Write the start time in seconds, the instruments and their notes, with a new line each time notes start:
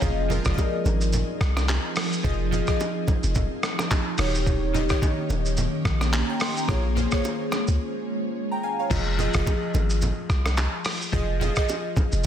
Already playing: synth keys C#5 F5
0.01 808-style bass F1, synth keys F3 F4 G#4 D#5, ambient pad F3 C4 D#4 G#4, kick, low conga, shaker
0.28 synth keys F3 F4 G#4 A#4, low conga, shaker
0.45 808-style bass F1, synth keys F3 F4 G#4 D5, kick, cross-stick, shaker
0.54 synth keys D#5
0.58 kick, high bongo, shaker
0.85 808-style bass G#1, low bongo, shaker
1.01 shaker
1.13 low conga, shaker
1.41 808-style bass C2, kick, cross-stick, shaker
1.57 cross-stick, low bongo, shaker
1.68 clap, high bongo, shaker
1.96 cross-stick, open hi-hat, shaker
2.13 shaker
2.23 808-style bass F1, synth keys F3 F4 G#4 D#5, kick, low conga, shaker
2.51 synth keys F3 F4 G#4 D#5, low conga, shaker
2.67 synth keys F3 F4 G#4 D#5, kick, cross-stick, shaker
2.80 high bongo, shaker
3.08 kick, low bongo, shaker
3.23 808-style bass F1, shaker
3.35 kick, low conga, shaker
3.63 cross-stick, shaker
3.79 cross-stick, low bongo, shaker
3.90 kick, clap, high bongo, shaker
4.17 808-style bass D#1, synth keys D#3 D#4 F#4 C#5, ambient pad D#3 A#3 C#4 G4, cross-stick, open hi-hat, shaker
4.26 synth keys G4
4.35 shaker
4.46 kick, low conga, shaker
4.73 synth keys D#3 D#4 G4 D#5, low conga, shaker
4.89 synth keys D#3 D#4 G4 C#5, kick, cross-stick, shaker
5.02 kick, high bongo, shaker
5.30 808-style bass D#1, low bongo, shaker
5.46 shaker
5.57 low conga, shaker
5.85 808-style bass A#1, kick, cross-stick, shaker
6.01 cross-stick, low bongo, shaker
6.13 clap, high bongo, shaker
6.29 synth keys G5 A#5
6.40 synth keys C6, cross-stick, open hi-hat, shaker
6.57 synth keys G5 A#5, shaker
6.67 808-style bass A#1, ambient pad G#3 C#4, synth keys A#3 F4 G#4 C#5, kick, cross-stick, low conga, shaker
6.95 synth keys A#3 F4 G#4 C5, low conga, shaker
7.11 synth keys A#3 F4 G#4 C#5, kick, cross-stick, shaker
7.24 high bongo, shaker
7.52 cross-stick, low bongo, shaker
7.68 808-style bass C#2, shaker
8.51 synth keys G5 A#5
8.63 synth keys F5 G#5
8.79 synth keys C#5 F5
8.90 808-style bass F1, synth keys F3 F4 G#4 D#5, kick, crash, low conga, shaker
9.17 synth keys F3 F4 G#4 D#5, low conga, shaker
9.34 808-style bass F1, synth keys F3 F4 G#4 D#5, kick, cross-stick, shaker
9.46 kick, high bongo, shaker
9.74 808-style bass G#1, low bongo, shaker
9.90 shaker
10.02 low conga, shaker
10.30 808-style bass C2, kick, cross-stick, shaker
10.46 cross-stick, low bongo, shaker
10.57 clap, high bongo, shaker
10.85 cross-stick, open hi-hat, shaker
11.02 shaker
11.12 808-style bass F1, synth keys F3 F4 G#4 D#5, kick, low conga, shaker
11.40 synth keys F3 F4 G#4 D#5, low conga, shaker
11.56 synth keys F3 F4 G#4 D#5, kick, cross-stick, shaker
11.69 high bongo, shaker
11.96 kick, low bongo, shaker
12.12 808-style bass F1, shaker